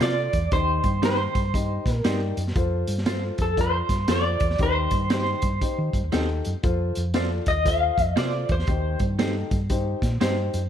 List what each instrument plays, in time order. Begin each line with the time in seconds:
0.00 fingered electric bass C3, clean electric guitar C4 F4 A4 C5 D5, upright piano F4 A4 D5, snare, closed hi-hat
0.33 fingered electric bass E2, kick, closed hi-hat
0.51 fingered electric bass D#2, upright piano D#3 D#4 G4 C5, clean electric guitar C5, kick, closed hi-hat
0.84 fingered electric bass G2, kick, closed hi-hat
1.02 clean electric guitar C4 D#4 G4 C5, upright piano D#4 G4 C5, snare, closed hi-hat
1.35 fingered electric bass G2, kick, closed hi-hat
1.54 upright piano D#4 G4 D#5, kick, closed hi-hat
1.86 fingered electric bass A#2, kick, snare, closed hi-hat
1.93 clean electric guitar A#4
2.04 fingered electric bass G2, clean electric guitar C4 D#4 G4 C5, upright piano D#4 G4 D5, snare, closed hi-hat
2.37 fingered electric bass F#2, closed hi-hat
2.47 snare
2.55 fingered electric bass F2, upright piano F4 A4 C5, kick, closed hi-hat
2.87 fingered electric bass G2, closed hi-hat
2.98 snare
3.06 clean electric guitar C4 F4 A4 C5, upright piano F4 A4 C5, snare, closed hi-hat
3.38 fingered electric bass F2, clean electric guitar A4, kick, closed hi-hat
3.57 upright piano F4 A4 D5, clean electric guitar C5, kick, closed hi-hat
3.89 fingered electric bass G2, kick, snare, closed hi-hat
4.08 fingered electric bass F2, clean electric guitar C4 F4 A4 C5 D5, upright piano F4 A4 C5, snare, closed hi-hat
4.40 fingered electric bass E2, kick, closed hi-hat
4.50 snare
4.58 fingered electric bass D#2, upright piano D#3 D#4 G4 C5, kick, closed hi-hat
4.63 clean electric guitar C5
4.91 fingered electric bass G2, kick, closed hi-hat
5.10 clean electric guitar C4 D#4 G4 C5, upright piano D#4 G4 C5, snare, closed hi-hat
5.42 fingered electric bass G2, kick, closed hi-hat
5.61 upright piano D#4 G4 C5, kick, closed hi-hat
5.78 fingered electric bass D#3
5.93 fingered electric bass G2, kick, closed hi-hat
6.04 fingered electric bass D#2
6.12 fingered electric bass D#2, clean electric guitar C4 D#4 G4 C5, upright piano D#4 G4 A4, snare, closed hi-hat
6.45 fingered electric bass F#2, closed hi-hat
6.63 fingered electric bass F2, upright piano F4 A4 C5, kick, closed hi-hat
6.95 fingered electric bass F2, closed hi-hat
7.14 clean electric guitar C4 F4 A4 C5, upright piano F4 A4 D5, snare, closed hi-hat
7.46 fingered electric bass D#2, clean electric guitar D#5, kick, closed hi-hat
7.65 upright piano F4 A4 C5, clean electric guitar F5, kick, closed hi-hat
7.98 fingered electric bass F2, kick, closed hi-hat
8.16 fingered electric bass C3, clean electric guitar C4 F4 A4 C5 D5, upright piano F4 A4 C5, snare, closed hi-hat
8.49 fingered electric bass E2, clean electric guitar C5, kick, closed hi-hat
8.59 snare
8.67 fingered electric bass D#2, upright piano D#3 D#4 G4 C5, kick, closed hi-hat
8.99 fingered electric bass G2, kick, closed hi-hat
9.19 clean electric guitar C4 D#4 G4 C5, upright piano D#4 G4 A4, snare, closed hi-hat
9.51 fingered electric bass G2, kick, closed hi-hat
9.70 upright piano D#4 G4 C5, kick, closed hi-hat
10.02 fingered electric bass A#2, kick, snare, closed hi-hat
10.21 fingered electric bass G2, clean electric guitar C4 D#4 G4 C5, upright piano D#4 G4 C5, snare, closed hi-hat
10.54 fingered electric bass F#2, closed hi-hat